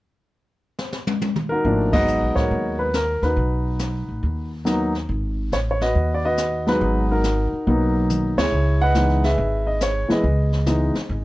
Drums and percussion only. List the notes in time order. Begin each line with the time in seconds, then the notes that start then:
0.79 snare
0.92 snare
1.07 high tom
1.21 high tom
1.36 mid tom
1.64 brush sweep, kick
1.93 kick, crash
2.07 hi-hat pedal
2.36 kick, snare
2.51 brush sweep, kick
2.93 snare, hi-hat pedal
3.22 snare
3.37 brush sweep, kick
3.79 snare, hi-hat pedal
4.23 brush sweep, kick
4.66 snare, hi-hat pedal
4.95 snare
5.09 brush sweep, kick
5.52 snare, hi-hat pedal
5.81 snare
5.95 brush sweep, kick
6.37 snare, hi-hat pedal
6.67 snare
6.81 brush sweep, kick
7.24 snare, hi-hat pedal
7.67 brush sweep, kick
8.10 hi-hat pedal, mid tom
8.38 snare, ride
8.52 brush sweep
8.94 snare, hi-hat pedal
9.09 snare
9.24 snare
9.38 brush sweep, kick
9.81 snare, hi-hat pedal
10.10 snare
10.24 brush sweep, kick
10.52 snare
10.66 snare, hi-hat pedal
10.95 snare
11.09 brush sweep, kick